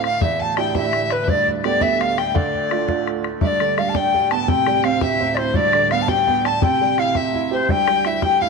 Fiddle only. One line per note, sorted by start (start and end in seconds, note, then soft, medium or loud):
0.05 0.23 F5 medium
0.21 0.41 E5 medium
0.40 0.57 A5 medium
0.57 0.77 G5 medium
0.75 1.13 E5 medium
1.11 1.26 B4 medium
1.24 1.47 D5 medium
1.24 1.29 E5 medium
1.64 1.83 D5 medium
1.82 2.02 E5 medium
2.00 2.19 F5 medium
2.18 2.37 G5 medium
2.35 3.07 D5 medium
3.42 3.75 D5 medium
3.78 3.97 F5 medium
3.96 4.31 G5 medium
4.31 4.50 A5 medium
4.48 4.86 G5 medium
4.85 5.04 F5 medium
5.02 5.38 E5 medium
5.39 5.57 C5 medium
5.56 5.91 D5 medium
5.91 6.10 F5 medium
6.09 6.44 G5 medium
6.45 6.65 A5 medium
6.63 6.99 G5 medium
6.99 7.18 F5 medium
7.17 7.54 E5 medium
7.53 7.69 C5 medium
7.69 8.07 G5 medium
8.06 8.24 E5 medium
8.22 8.40 G5 medium
8.40 8.49 F5 medium